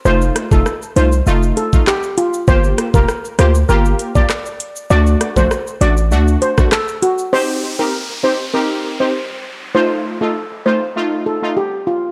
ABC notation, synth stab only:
X:1
M:4/4
L:1/16
Q:1/4=99
K:Cdor
V:1 name="Synth stab"
[A,EF]3 [A,EF] z2 [A,EF] z [A,EF]3 [A,EF] z4 | [B,FG]3 [B,FG] z2 [B,FG] z [B,FG]3 [B,FG] z4 | [A,D^F]3 [A,DF] z2 [A,DF] z [A,DF]3 [A,DF] z4 | [CEG]3 [CEG] z2 [CEG] z [CEG]3 [CEG] z4 |
[A,EF]3 [A,EF] z2 [A,EF] z [A,EF]3 [A,EF] z4 |]